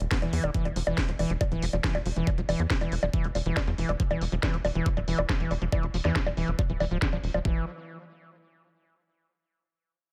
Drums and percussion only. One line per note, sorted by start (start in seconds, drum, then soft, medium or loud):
0.01 closed hi-hat soft
0.11 kick loud
0.11 snare loud
0.11 closed hi-hat medium
0.22 closed hi-hat soft
0.22 high bongo soft
0.33 open hi-hat loud
0.44 closed hi-hat soft
0.44 high bongo medium
0.54 kick loud
0.54 closed hi-hat medium
0.65 closed hi-hat soft
0.65 high bongo soft
0.76 open hi-hat loud
0.87 closed hi-hat soft
0.87 high bongo medium
0.98 kick loud
0.98 snare loud
0.98 closed hi-hat medium
1.08 closed hi-hat soft
1.19 open hi-hat medium
1.19 high bongo soft
1.30 closed hi-hat soft
1.41 kick loud
1.41 closed hi-hat medium
1.41 high bongo medium
1.52 closed hi-hat soft
1.62 open hi-hat loud
1.73 closed hi-hat soft
1.73 high bongo soft
1.84 kick loud
1.84 snare loud
1.84 closed hi-hat medium
1.95 closed hi-hat soft
1.95 high bongo medium
2.06 open hi-hat medium
2.16 closed hi-hat soft
2.27 kick loud
2.27 closed hi-hat medium
2.27 high bongo soft
2.38 closed hi-hat soft
2.49 open hi-hat loud
2.49 high bongo medium
2.60 closed hi-hat soft
2.70 kick loud
2.70 snare loud
2.70 closed hi-hat medium
2.81 closed hi-hat soft
2.81 high bongo soft
2.92 open hi-hat medium
3.03 closed hi-hat soft
3.03 high bongo medium
3.13 kick loud
3.13 closed hi-hat medium
3.24 closed hi-hat soft
3.35 open hi-hat loud
3.35 high bongo soft
3.46 closed hi-hat soft
3.57 kick loud
3.57 snare loud
3.57 closed hi-hat medium
3.57 high bongo medium
3.67 closed hi-hat soft
3.78 open hi-hat medium
3.89 closed hi-hat soft
3.89 high bongo soft
4.00 kick loud
4.00 closed hi-hat medium
4.11 closed hi-hat soft
4.11 high bongo medium
4.21 open hi-hat loud
4.32 closed hi-hat soft
4.43 kick loud
4.43 snare loud
4.43 closed hi-hat medium
4.43 high bongo soft
4.54 closed hi-hat soft
4.65 open hi-hat medium
4.65 high bongo medium
4.75 closed hi-hat soft
4.86 kick loud
4.86 closed hi-hat medium
4.97 closed hi-hat soft
4.97 high bongo soft
5.08 open hi-hat loud
5.18 high bongo medium
5.29 kick loud
5.29 snare loud
5.29 closed hi-hat medium
5.40 closed hi-hat soft
5.51 open hi-hat medium
5.51 high bongo soft
5.62 closed hi-hat soft
5.72 kick loud
5.72 closed hi-hat medium
5.72 high bongo medium
5.83 closed hi-hat soft
5.94 open hi-hat loud
6.05 snare soft
6.05 closed hi-hat soft
6.05 high bongo soft
6.16 kick loud
6.16 snare loud
6.16 closed hi-hat medium
6.26 closed hi-hat soft
6.26 high bongo medium
6.37 open hi-hat medium
6.48 closed hi-hat soft
6.59 kick loud
6.59 closed hi-hat medium
6.59 high bongo soft
6.70 closed hi-hat soft
6.80 open hi-hat loud
6.80 high bongo medium
6.91 closed hi-hat soft
7.02 kick loud
7.02 snare loud
7.02 closed hi-hat medium
7.13 closed hi-hat soft
7.13 high bongo soft
7.24 open hi-hat medium
7.34 high bongo medium
7.45 kick loud